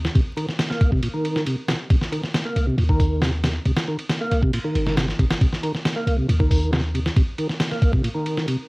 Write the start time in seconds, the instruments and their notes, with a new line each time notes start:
0.05 snare
0.15 808-style bass C2, tonewheel organ C3, kick, ride
0.37 tonewheel organ D#3, ride
0.48 snare
0.59 snare, ride
0.70 tonewheel organ A#3, snare
0.81 808-style bass C2, kick, ride
0.92 tonewheel organ C3, kick
1.03 tonewheel organ A#2, ride
1.14 tonewheel organ D#3
1.25 ride
1.36 snare
1.47 tonewheel organ C3, ride
1.69 tonewheel organ C3, snare, ride
1.90 808-style bass C2, tonewheel organ C3, kick, ride
2.02 snare
2.12 tonewheel organ D#3, ride
2.24 snare
2.34 snare, ride
2.45 tonewheel organ A#3
2.56 808-style bass C2, ride
2.67 tonewheel organ C3
2.78 808-style bass D#2, tonewheel organ A#2, ride
2.89 tonewheel organ D#3, kick
3.00 kick, open hi-hat
3.22 tonewheel organ C3, snare, ride
3.44 tonewheel organ C3, snare, ride
3.66 808-style bass C2, tonewheel organ C3, ride
3.77 snare, ride
3.88 tonewheel organ D#3
3.99 ride
4.09 snare, ride
4.21 tonewheel organ A#3
4.31 808-style bass C2, ride
4.42 tonewheel organ C3, kick
4.53 tonewheel organ A#2, ride
4.64 tonewheel organ D#3
4.75 808-style bass G1, ride
4.87 snare
4.97 tonewheel organ C3, snare, ride
5.08 snare
5.19 808-style bass G1, tonewheel organ C3, kick, ride
5.30 snare, ride
5.41 808-style bass C2, tonewheel organ C3, kick, ride
5.52 snare
5.63 tonewheel organ D#3, ride
5.75 snare
5.85 snare, ride
5.96 tonewheel organ A#3
6.07 808-style bass C2, ride
6.18 tonewheel organ C3
6.28 808-style bass D#2, tonewheel organ A#2, ride
6.39 tonewheel organ D#3, kick
6.51 kick, open hi-hat
6.72 tonewheel organ C3, snare, ride
6.94 tonewheel organ C3, ride
7.06 snare
7.16 808-style bass C2, tonewheel organ C3, kick, ride
7.38 tonewheel organ D#3, ride
7.49 snare
7.60 snare, ride
7.71 tonewheel organ A#3, snare
7.82 808-style bass C2, kick, ride
7.93 tonewheel organ C3, kick
8.03 tonewheel organ A#2, ride
8.14 tonewheel organ D#3
8.26 ride
8.37 snare
8.48 tonewheel organ C3, ride